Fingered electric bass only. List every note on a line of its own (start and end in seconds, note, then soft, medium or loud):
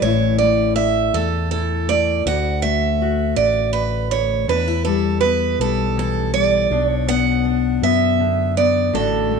0.01 1.09 A1 medium
1.14 2.21 E2 medium
2.26 3.33 D2 medium
3.36 4.44 A1 medium
4.48 5.56 E2 medium
5.59 6.67 B1 medium
6.70 7.78 B1 medium
7.82 8.90 F#2 medium
8.93 9.40 A1 medium